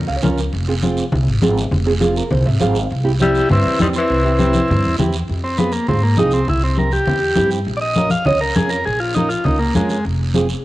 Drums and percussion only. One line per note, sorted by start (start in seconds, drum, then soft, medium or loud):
0.22 high conga loud
0.22 low conga medium
0.22 short guiro medium
0.38 short guiro medium
0.53 long guiro medium
0.82 high conga medium
0.82 short guiro medium
0.97 short guiro medium
1.12 low conga medium
1.12 long guiro medium
1.42 high conga medium
1.42 short guiro medium
1.58 short guiro medium
1.71 low conga medium
1.71 long guiro medium
2.01 high conga medium
2.01 short guiro medium
2.16 short guiro medium
2.30 low conga medium
2.30 long guiro medium
2.60 high conga medium
2.60 short guiro medium
2.75 short guiro medium
2.90 long guiro medium
3.19 high conga medium
3.19 short guiro medium
3.35 short guiro medium
3.49 low conga medium
3.49 long guiro medium
3.79 high conga medium
3.79 short guiro medium
3.93 short guiro medium
4.08 long guiro medium
4.38 high conga medium
4.38 short guiro medium
4.53 high conga medium
4.53 short guiro medium
4.68 low conga medium
4.68 long guiro medium
4.98 high conga medium
4.98 low conga medium
4.98 short guiro medium
5.13 short guiro medium
5.28 long guiro medium
5.57 high conga medium
5.57 short guiro medium
5.72 short guiro medium
5.87 low conga medium
5.87 long guiro medium
6.16 high conga medium
6.16 short guiro medium
6.31 short guiro medium
6.45 low conga medium
6.45 long guiro medium
6.75 high conga medium
6.75 short guiro medium
6.91 short guiro medium
7.06 low conga medium
7.06 long guiro medium
7.36 high conga medium
7.36 short guiro medium
7.51 short guiro medium
7.65 long guiro medium
7.95 high conga medium
7.95 short guiro medium
8.10 high conga medium
8.10 short guiro medium
8.25 low conga medium
8.25 long guiro medium
8.55 high conga loud
8.55 short guiro medium
8.69 short guiro medium
8.84 long guiro medium
9.14 high conga medium
9.14 short guiro medium
9.30 short guiro medium
9.44 low conga medium
9.44 long guiro medium
9.74 high conga medium
9.74 short guiro medium
9.89 short guiro medium
10.05 long guiro medium
10.34 high conga medium
10.34 short guiro medium
10.49 short guiro medium